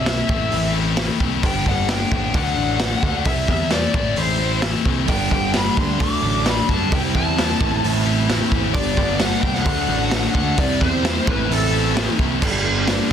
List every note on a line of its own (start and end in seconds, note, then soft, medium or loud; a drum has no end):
0.00 0.21 B1 medium
0.00 0.29 C3 medium
0.00 0.29 G3 medium
0.00 0.72 E5 medium
0.04 0.27 C3 medium
0.04 0.29 E3 medium
0.04 0.27 G3 medium
0.04 0.27 C4 medium
0.04 0.26 E4 medium
0.04 snare loud
0.04 open hi-hat medium
0.27 0.48 A1 medium
0.27 0.98 A2 medium
0.27 0.96 E3 medium
0.27 0.74 A3 medium
0.27 0.73 C4 medium
0.27 0.72 E4 medium
0.27 kick medium
0.52 1.08 A1 medium
0.52 1.43 E4 medium
0.52 open hi-hat medium
0.74 0.96 A3 medium
0.74 0.97 C4 medium
0.74 0.98 E4 medium
0.97 1.42 E3 medium
0.97 1.21 A3 medium
0.97 1.20 C4 medium
0.97 1.19 E4 medium
0.97 snare loud
0.97 open hi-hat medium
1.20 1.39 C2 medium
1.20 1.43 A3 medium
1.20 1.42 C4 medium
1.20 1.42 E4 medium
1.20 kick medium
1.42 1.62 G1 medium
1.42 1.87 G2 medium
1.42 1.88 D3 medium
1.42 1.88 G3 medium
1.42 1.88 B3 medium
1.42 1.89 D4 medium
1.42 1.68 G5 loud
1.42 kick loud
1.42 open hi-hat medium
1.64 2.04 G1 medium
1.64 2.09 B3 medium
1.64 kick medium
1.69 1.90 F#5 medium
1.88 2.33 G2 medium
1.88 2.32 D3 medium
1.88 2.33 G3 medium
1.88 2.34 B3 medium
1.88 2.34 D4 medium
1.88 2.12 G5 loud
1.88 snare loud
1.88 open hi-hat medium
2.10 2.30 A1 medium
2.10 2.34 B3 medium
2.10 2.35 G5 medium
2.10 kick medium
2.33 2.53 D2 medium
2.33 2.79 D3 medium
2.33 2.59 F#3 medium
2.33 2.58 A3 medium
2.33 2.57 D4 loud
2.33 3.29 F#5 loud
2.33 kick loud
2.33 open hi-hat medium
2.56 2.95 A1 medium
2.56 2.80 F#3 medium
2.56 2.81 A3 medium
2.56 2.81 D4 medium
2.80 3.25 D3 medium
2.80 3.04 F#3 medium
2.80 3.03 A3 medium
2.80 3.02 D4 medium
2.80 snare loud
2.80 open hi-hat medium
3.03 3.22 D2 medium
3.03 3.25 F#3 medium
3.03 3.25 A3 medium
3.03 3.25 D4 medium
3.03 kick medium
3.25 3.44 C2 medium
3.25 3.70 C3 medium
3.25 3.71 G3 medium
3.25 3.71 C4 loud
3.25 3.72 E4 loud
3.25 3.49 E5 medium
3.25 kick loud
3.25 open hi-hat medium
3.48 3.86 E2 medium
3.48 3.94 G3 medium
3.48 3.71 E5 medium
3.48 kick medium
3.71 3.93 C3 medium
3.71 3.94 E3 medium
3.71 3.93 G3 medium
3.71 3.93 C4 medium
3.71 3.92 E4 loud
3.71 3.94 D5 medium
3.71 snare loud
3.71 open hi-hat medium
3.94 4.13 A1 medium
3.94 4.64 A2 medium
3.94 4.60 E3 medium
3.94 4.39 A3 medium
3.94 4.39 C4 medium
3.94 4.38 E4 medium
3.94 4.18 D5 medium
3.94 kick loud
4.16 4.73 A1 medium
4.16 5.08 E4 medium
4.16 4.60 C5 medium
4.16 open hi-hat medium
4.39 4.61 A3 medium
4.39 4.62 C4 medium
4.39 4.62 E4 medium
4.61 5.06 E3 medium
4.61 4.86 A3 medium
4.61 4.85 C4 medium
4.61 4.84 E4 medium
4.61 snare loud
4.61 open hi-hat medium
4.85 5.04 C2 medium
4.85 5.08 A3 medium
4.85 5.07 C4 medium
4.85 5.07 E4 medium
4.85 kick medium
5.07 5.27 G1 medium
5.07 5.52 G2 medium
5.07 5.53 D3 medium
5.07 5.54 G3 medium
5.07 5.54 B3 medium
5.07 5.55 D4 loud
5.07 5.56 G5 medium
5.07 kick loud
5.07 open hi-hat medium
5.30 5.69 G1 medium
5.30 5.54 G3 medium
5.30 5.77 B3 medium
5.30 5.55 B3 medium
5.30 5.56 D4 medium
5.30 kick medium
5.53 5.98 G2 medium
5.53 5.98 D3 medium
5.53 5.99 G3 medium
5.53 5.99 B3 medium
5.53 6.00 D4 medium
5.53 5.78 B5 medium
5.53 snare loud
5.53 open hi-hat medium
5.75 5.96 D2 medium
5.75 5.99 G3 medium
5.75 5.99 B3 medium
5.75 6.01 B3 medium
5.75 5.98 D4 medium
5.75 6.01 C6 medium
5.75 kick medium
5.99 6.19 D2 medium
5.99 6.45 D3 medium
5.99 6.23 F#3 medium
5.99 6.23 A3 medium
5.99 6.21 D4 loud
5.99 6.48 D6 loud
5.99 kick loud
5.99 open hi-hat medium
6.22 6.60 A1 medium
6.22 6.46 F#3 medium
6.22 6.46 A3 medium
6.22 6.47 D4 medium
6.46 6.91 D3 medium
6.46 6.70 F#3 medium
6.46 6.69 A3 medium
6.46 6.69 D4 medium
6.46 6.71 B5 medium
6.46 snare loud
6.46 open hi-hat medium
6.69 6.88 G2 medium
6.69 6.92 F#3 medium
6.69 6.91 A3 medium
6.69 6.91 D4 medium
6.69 6.93 A5 medium
6.69 kick medium
6.92 7.11 C2 loud
6.92 7.37 C3 medium
6.92 7.37 G3 medium
6.92 7.38 C4 loud
6.92 7.39 E4 loud
6.92 7.00 G5 medium
6.92 kick loud
6.92 open hi-hat medium
7.14 7.52 E2 medium
7.14 7.61 G3 medium
7.14 7.36 G3 medium
7.14 7.38 C4 medium
7.14 7.39 E4 medium
7.14 8.03 A5 medium
7.14 kick medium
7.38 7.59 C3 medium
7.38 7.61 E3 medium
7.38 7.60 G3 medium
7.38 7.59 C4 medium
7.38 7.59 E4 loud
7.38 snare loud
7.38 open hi-hat medium
7.60 7.79 A1 medium
7.60 8.30 A2 medium
7.60 8.28 E3 medium
7.60 8.06 A3 medium
7.60 8.05 C4 medium
7.60 8.05 E4 medium
7.60 kick loud
7.82 8.40 A1 medium
7.82 8.52 A2 medium
7.82 8.27 E3 medium
7.82 8.29 A3 loud
7.82 8.29 C4 loud
7.82 8.75 E4 medium
7.82 8.30 E4 loud
7.82 open hi-hat soft
8.06 8.29 A3 medium
8.06 8.29 C4 medium
8.06 8.30 E4 medium
8.29 8.74 E3 medium
8.29 8.53 A3 medium
8.29 8.52 C4 medium
8.29 8.50 E4 medium
8.29 snare loud
8.29 open hi-hat medium
8.51 8.71 A1 medium
8.51 8.74 A3 medium
8.51 8.74 C4 medium
8.51 8.73 E4 medium
8.51 kick medium
8.74 8.93 G1 medium
8.74 9.18 G2 medium
8.74 9.18 D3 loud
8.74 9.19 G3 medium
8.74 9.19 B3 loud
8.74 9.20 D4 medium
8.74 9.22 D5 medium
8.74 kick loud
8.74 open hi-hat medium
8.97 9.35 G1 medium
8.97 9.19 G3 medium
8.97 9.41 B3 medium
8.97 9.20 B3 medium
8.97 9.21 D4 medium
8.97 kick medium
9.19 9.64 G2 medium
9.19 9.64 D3 medium
9.19 9.65 G3 medium
9.19 9.65 B3 medium
9.19 9.65 D4 medium
9.19 9.42 F#5 loud
9.19 snare loud
9.19 open hi-hat medium
9.42 9.62 C2 medium
9.42 9.65 G3 medium
9.42 9.66 B3 medium
9.42 9.65 D4 medium
9.42 9.54 G5 medium
9.42 kick medium
9.54 10.34 F#5 medium
9.54 snare soft
9.65 9.85 D2 loud
9.65 10.10 D3 medium
9.65 9.89 F#3 medium
9.65 9.88 A3 loud
9.65 9.87 D4 loud
9.65 kick loud
9.65 open hi-hat medium
9.88 10.26 A1 medium
9.88 10.11 F#3 medium
9.88 10.12 A3 medium
9.88 10.12 D4 medium
10.11 10.56 D3 medium
10.11 10.35 F#3 medium
10.11 10.34 A3 medium
10.11 10.33 D4 medium
10.11 snare loud
10.11 open hi-hat medium
10.34 10.54 D2 medium
10.34 10.57 F#3 medium
10.34 10.57 A3 medium
10.34 10.56 D4 medium
10.34 10.59 F#5 loud
10.34 kick medium
10.58 10.77 C2 loud
10.58 11.02 C3 loud
10.58 11.02 G3 medium
10.58 11.03 C4 loud
10.58 11.03 E4 loud
10.58 10.80 D5 loud
10.58 kick loud
10.58 open hi-hat medium
10.78 11.19 E2 loud
10.78 11.27 G3 medium
10.78 11.03 G3 medium
10.78 11.04 C4 medium
10.78 11.05 E4 medium
10.78 11.27 C5 medium
10.78 kick medium
11.03 11.25 C3 medium
11.03 11.27 E3 medium
11.03 11.25 G3 medium
11.03 11.25 C4 loud
11.03 11.24 E4 medium
11.03 snare loud
11.03 open hi-hat medium
11.25 11.46 A1 loud
11.25 11.96 A2 medium
11.25 11.94 E3 medium
11.25 11.73 A3 medium
11.25 11.73 C4 medium
11.25 11.72 E4 medium
11.25 11.51 B4 medium
11.25 kick loud
11.47 12.06 A1 medium
11.47 12.17 A2 medium
11.47 11.93 E3 medium
11.47 11.94 A3 loud
11.47 11.96 C4 loud
11.47 12.41 E4 medium
11.47 11.96 E4 loud
11.51 12.16 A4 medium
11.51 open hi-hat medium
11.73 11.95 A3 medium
11.73 11.96 C4 medium
11.73 11.96 E4 medium
11.95 12.40 E3 medium
11.95 12.19 A3 medium
11.95 12.18 C4 medium
11.95 12.17 E4 medium
11.95 snare loud
11.95 open hi-hat medium
12.18 12.38 C2 medium
12.18 12.41 A3 medium
12.18 12.41 C4 medium
12.18 12.40 E4 medium
12.18 kick medium
12.41 12.98 G1 medium
12.41 12.87 G2 medium
12.41 12.87 D3 medium
12.41 12.66 G3 medium
12.41 12.65 B3 medium
12.41 12.64 D4 medium
12.41 kick loud
12.41 crash loud
12.65 12.87 G3 medium
12.65 12.88 B3 medium
12.65 12.89 D4 medium
12.88 13.13 D3 medium
12.88 13.13 G3 medium
12.88 13.13 B3 medium
12.88 13.13 D4 medium
12.88 snare loud
12.88 open hi-hat medium